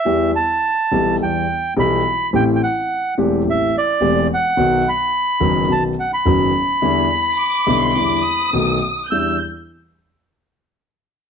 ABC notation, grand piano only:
X:1
M:4/4
L:1/8
Q:1/4=106
K:Em
V:1 name="Grand piano" clef=bass
[E,,E,G,B,G] z2 [B,,,B,,E,G,B,G] [E,,E,G,B,G] z [B,,,B,,E,G,B,G] z | [A,,,A,,E,A,CG] z2 [E,,,E,,E,A,CG] [A,,,A,,E,A,CG] z [E,,,E,,E,A,CG] z | [B,,,B,,^D,F,B,F] z2 [F,,,F,,D,F,B,F] [B,,,B,,D,F,B,F] z [F,,,F,,D,F,B,F] z | [E,,D,E,G,B,E] z2 [B,,,B,,D,G,B,E] [E,,D,E,G,B,E] z [B,,,B,,^D,A,B,F] z |
[E,,G,DE] z6 z |]